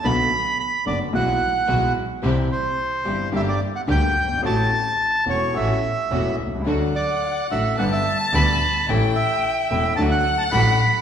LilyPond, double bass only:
\new Staff \with { instrumentName = "Double bass" } { \clef bass \time 4/4 \key d \major \tempo 4 = 109 b,,8 r4 fis,,8 b,,8 r8 b,,8 r8 | c,8 r4 g,,8 g,,8 r8 d,8 g,,8 | a,,8 r4 e,,8 a,,8 r8 e,,8 c,8 | d,8 r4 a,,8 g,,8 r8 d,8 r8 |
a,,8 r4 e,,8 d,8 r8 a,,8 r8 | }